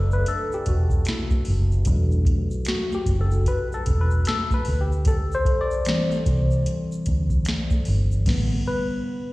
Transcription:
Already playing: F#1 F#3 A3 D4 A4 B4 D5 E5
0.11 B4, shaker
0.26 A4, closed hi-hat, shaker
0.52 G4, shaker
0.66 E1 F#4, kick, closed hi-hat, shaker
0.90 kick, shaker
1.05 E4, finger snap, snare, closed hi-hat, shaker
1.30 kick, shaker
1.45 F#1, open hi-hat
1.71 shaker
1.85 E1 F#3 A3 D4, kick, closed hi-hat, shaker
2.11 shaker
2.25 kick, closed hi-hat
2.51 shaker
2.65 F#4, finger snap, snare, closed hi-hat, shaker
2.92 G4, shaker
3.06 F#1, kick, closed hi-hat, shaker
3.21 A4
3.31 shaker
3.46 B4, kick, closed hi-hat, shaker
3.72 A4, shaker
3.86 E1, kick, closed hi-hat, shaker
4.01 B4
4.11 shaker
4.25 A4, finger snap, snare, closed hi-hat, shaker
4.51 B4, kick, shaker
4.65 D2, open hi-hat
4.81 G4
4.92 shaker
5.05 A4, kick, closed hi-hat, shaker
5.32 C5, shaker
5.45 kick, closed hi-hat
5.61 D5
5.71 shaker
5.85 E3 G3 C4, finger snap, snare, closed hi-hat, shaker
6.11 shaker
6.26 C2, kick, closed hi-hat, shaker
6.51 shaker
6.66 closed hi-hat, shaker
6.92 shaker
7.06 D2, kick, closed hi-hat, shaker
7.30 kick, shaker
7.45 finger snap, snare, closed hi-hat, shaker
7.70 kick, shaker
7.85 G1, open hi-hat
8.12 shaker
8.26 A1 D3 G3 B3, kick, snare, crash
8.68 B4

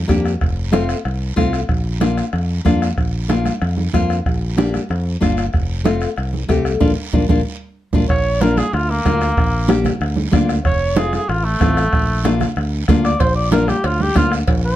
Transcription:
0.08 F2 A#3 D4 G4, bombo low, bombo rim, high conga, short guiro
0.25 bombo rim, short guiro
0.41 F1, bombo low, bombo rim, high conga, long guiro
0.72 A3 C4 F4, bombo rim, high conga, short guiro
0.89 bombo rim, short guiro
1.05 C2, bombo rim, high conga, long guiro
1.36 C2 A3 C4 F4, bombo low, bombo rim, high conga, short guiro
1.53 bombo rim, short guiro
1.69 A#1, bombo low, bombo rim, high conga, long guiro
2.00 A#3 D4 F4, bombo rim, high conga, short guiro
2.17 bombo rim, short guiro
2.33 F2, bombo rim, high conga, long guiro
2.65 F2 A#3 D4 F4, bombo low, bombo rim, high conga, short guiro
2.82 bombo rim, short guiro
2.97 A#1, bombo low, bombo rim, high conga, long guiro
3.29 A#3 D4 F4, bombo rim, high conga, short guiro
3.45 bombo rim, high conga, short guiro
3.61 F2, bombo rim, high conga, long guiro
3.77 high conga
3.93 F2 A#3 D4 F4, bombo low, bombo rim, high conga, short guiro
4.10 bombo rim, short guiro
4.26 A#1, bombo low, bombo rim, high conga, long guiro
4.57 A#3 D4 G4, bombo rim, high conga, short guiro
4.74 bombo rim, high conga, short guiro
4.89 F2, bombo rim, high conga, long guiro
5.21 G1 A#3 D4 F4, bombo low, bombo rim, high conga, short guiro
5.37 bombo rim, short guiro
5.53 F1, bombo low, bombo rim, high conga, long guiro
5.84 A3 C4 F4, bombo rim, high conga, short guiro
6.01 bombo rim, short guiro
6.16 C2, bombo rim, high conga, long guiro
6.34 high conga
6.49 C2 A3 C4 G4, bombo low, bombo rim, high conga, short guiro
6.65 bombo rim, short guiro
6.80 A#1 A#3 D4 F4, bombo low, high conga, long guiro
7.13 A#1 A#3 D4 F4, bombo low, high conga, long guiro
7.29 A#1 A#3 D4 F4, bombo low, high conga, long guiro
7.93 A#1 A#3 D4 F4, bombo low, high conga, long guiro
8.09 A#1 C#5, bombo low, bombo rim, high conga, long guiro
8.41 A#3 D4 F4 A#4, bombo rim, high conga, short guiro
8.57 G#4, bombo rim, high conga, short guiro
8.73 D2 F4, bombo rim, high conga, long guiro
8.90 A#3
9.05 D2 A#3 D4 F4, bombo low, bombo rim, high conga, short guiro
9.21 bombo rim, short guiro
9.37 A#1, bombo low, bombo rim, high conga, long guiro
9.68 A#3 D4 G4, bombo rim, high conga, short guiro
9.85 bombo rim, high conga, low conga, short guiro
10.01 D2, bombo rim, high conga, long guiro
10.16 high conga
10.31 D2 A#3 D4 F4, bombo low, bombo rim, high conga, low conga, short guiro
10.49 bombo rim, short guiro
10.64 F1 C#5, bombo low, bombo rim, high conga, long guiro
10.96 A3 C4 F4 G#4, bombo rim, high conga, short guiro
11.13 G#4, bombo rim, high conga, short guiro
11.29 A1 F4, bombo rim, high conga, long guiro
11.45 A3
11.60 A1 A3 C4 F4, bombo low, bombo rim, high conga, short guiro
11.77 bombo rim, short guiro
11.93 A#1, bombo low, bombo rim, high conga, long guiro
12.24 A#3 D4 F4, bombo rim, high conga, short guiro
12.40 bombo rim, low conga, short guiro
12.56 D2, bombo rim, high conga, long guiro
12.88 D2 A#3 D4 F4, bombo low, bombo rim, high conga, low conga, short guiro
13.04 D5, bombo rim, short guiro
13.20 A#1 C5, bombo low, bombo rim, cowbell, high conga, long guiro
13.35 D5
13.52 A#3 D4 F4 A#4, bombo rim, cowbell, high conga, short guiro
13.68 G4, bombo rim, high conga, short guiro
13.84 D2 F4, bombo rim, cowbell, high conga, long guiro
14.00 G4, high conga
14.15 D2 A#3 D4 F4, bombo low, bombo rim, cowbell, high conga, short guiro
14.32 bombo rim, short guiro
14.47 A#1, bombo low, bombo rim, cowbell, high conga, long guiro
14.65 C5

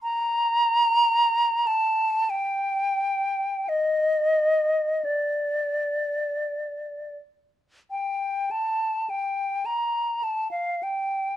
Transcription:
0.03 A#5
1.67 A5
2.30 G5
3.69 D#5
5.05 D5
7.91 G5
8.51 A5
9.10 G5
9.66 A#5
10.23 A5
10.51 F5
10.83 G5

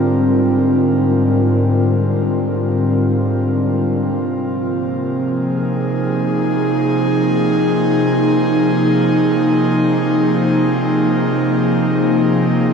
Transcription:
Already playing: G#2 D3 G3 C4 F4 A#4
4.08 C3
4.37 F3
4.45 A#3
5.06 G#4
5.44 D#4

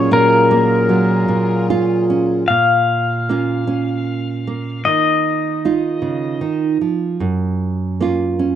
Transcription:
Already playing: A#2 F#3 A#3 C#4 F4 G#4 C#5
0.11 A#2 F4 A#4
0.51 A#3
0.89 F#3
1.28 A#2
1.70 F4
2.10 C#4
2.48 A#2 F5
3.29 A#3 C#4 F4
3.67 C#4
4.47 A#3
4.85 D#3 D#5
5.65 D#4 F4
6.02 C#3
6.41 D#3
6.81 F3
7.20 F#2
8.00 A#3 C#4 F4
8.39 C#4

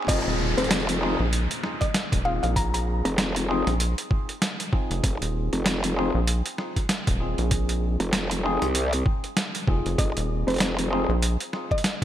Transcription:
0.02 mid tom
0.05 mid tom
0.07 F1 C4 D#4 F4 G#4 D#5, kick, closed hi-hat, mid tom, crash, downlifter
0.27 D#1
0.57 F1 C5, closed hi-hat
0.64 closed hi-hat
0.71 snare, closed hi-hat
0.80 closed hi-hat
0.89 closed hi-hat
1.01 C4 D#4 F4 G#4
1.20 A#1
1.33 closed hi-hat
1.51 closed hi-hat
1.64 snare
1.81 D#5, kick, closed hi-hat
1.94 snare, closed hi-hat
2.12 D#1, kick, closed hi-hat
2.25 C4 D#4 F4 G#4 F5
2.43 A#1 F5, closed hi-hat
2.56 A#5, kick, closed hi-hat
2.74 A#5, closed hi-hat
3.05 F1 A#5, closed hi-hat
3.18 A#5, snare, closed hi-hat
3.36 closed hi-hat
3.49 C4 D#4 F4 G#4
3.67 A#1, snare, closed hi-hat
3.80 closed hi-hat
3.98 closed hi-hat
4.11 kick
4.29 closed hi-hat
4.42 snare, closed hi-hat
4.60 closed hi-hat
4.73 C4 D#4 F4 G#4, kick
4.91 F1, closed hi-hat
5.04 F1, kick, closed hi-hat
5.22 D#1, closed hi-hat
5.53 F1, closed hi-hat
5.66 snare, closed hi-hat
5.84 closed hi-hat
5.96 C4 D#4 F4 G#4
6.15 A#1
6.27 closed hi-hat
6.46 closed hi-hat
6.58 snare
6.76 kick, closed hi-hat
6.89 snare, closed hi-hat
7.07 D#1, kick, closed hi-hat
7.20 C4 D#4 F4 G#4
7.38 A#1, closed hi-hat
7.51 kick, closed hi-hat
7.69 closed hi-hat
8.00 F1, closed hi-hat
8.13 snare, closed hi-hat
8.31 closed hi-hat
8.44 C4 D#4 F4 G#4
8.62 C2, snare, closed hi-hat
8.75 closed hi-hat
8.93 closed hi-hat
9.06 kick
9.24 closed hi-hat
9.37 snare, closed hi-hat
9.55 closed hi-hat
9.68 F1 C4 D#4 F4 G#4, kick
9.86 F1, closed hi-hat
9.98 F1 D#5, kick, closed hi-hat
10.17 D#1, closed hi-hat
10.47 F1 C5, closed hi-hat
10.50 closed hi-hat
10.54 closed hi-hat
10.56 closed hi-hat
10.58 snare, closed hi-hat
10.60 closed hi-hat
10.79 closed hi-hat
10.91 C4 D#4 F4 G#4
11.09 A#1
11.22 closed hi-hat
11.40 closed hi-hat
11.53 snare
11.71 D#5, kick
11.78 closed hi-hat
11.84 snare, closed hi-hat

